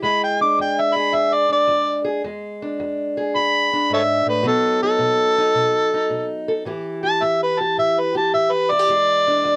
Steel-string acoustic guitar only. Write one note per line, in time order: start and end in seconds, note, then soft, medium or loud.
0.00 0.54 E2 medium
0.00 2.23 G#3 medium
0.00 0.40 E4 medium
0.41 1.48 D4 medium
0.59 1.10 E2 medium
0.96 2.03 G#4 medium
1.13 1.65 E2 medium
1.49 2.21 D4 medium
1.68 2.20 E2 medium
2.05 2.21 G#4 medium
2.24 2.76 E2 medium
2.24 4.44 G#3 medium
2.62 3.72 D4 medium
2.80 3.31 E2 medium
3.17 4.44 G#4 medium
3.35 3.87 E2 medium
3.73 4.44 D4 medium
3.90 4.25 G#2 medium
4.26 4.45 A2 medium
4.43 4.96 B2 medium
4.43 6.64 F#3 medium
4.43 6.65 B3 medium
4.43 4.82 D#4 medium
4.83 5.37 D#4 medium
4.99 5.52 B2 medium
5.38 5.93 D#4 medium
5.55 6.08 B2 medium
5.94 6.66 D#4 medium
6.10 6.63 B2 medium
6.48 6.65 A4 medium
6.65 7.18 A2 medium
6.65 9.56 E3 medium
6.65 8.71 E4 medium
6.65 7.02 G4 medium
7.03 7.59 G4 medium
7.22 7.74 A2 medium
7.61 8.14 G4 medium
7.78 8.30 A2 medium
8.15 8.71 G4 medium
8.33 8.86 A2 medium
8.72 8.79 E4 medium
8.79 8.89 G4 medium
8.88 9.41 E2 medium
8.88 9.56 G#3 medium
9.27 9.56 D4 medium
9.44 9.56 E2 medium